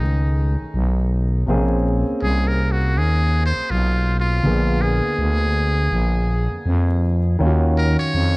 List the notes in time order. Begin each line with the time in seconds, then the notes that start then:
Already playing: D#3 A3 C#4 D#4 G#4
0.00 C#2
0.59 B1
0.74 B1
1.46 A#1 C3 A#3 C4 G#4
1.53 C#4
2.07 C2
2.22 C2 G#4
2.48 A#4
2.72 F#4
2.97 D#2 G#4
3.46 C5
3.56 B1
3.70 B1 F4
4.20 F4
4.43 A#1 D3 A#3 B3 G#4
4.82 G#4
5.04 D2
5.18 D2
5.91 A#1
6.51 F2
6.66 F2
7.39 D#2 D#3 F3 C#4 F4
7.46 F#4
7.78 A#4
7.99 F2 C#5
8.14 F2